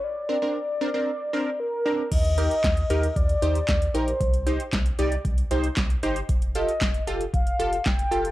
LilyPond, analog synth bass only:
\new Staff \with { instrumentName = "Analog synth bass" } { \clef bass \time 4/4 \key ees \major \tempo 4 = 115 r1 | ees,4 ees,8 ees,8 ees,8 ees,8 ees,8 bes,,8 | c,4 c,8 c,8 c,8 c,8 c,8 g,,8 | f,,4 f,,8 f,,8 f,,8 f,,8 f,,8 f,,8 | }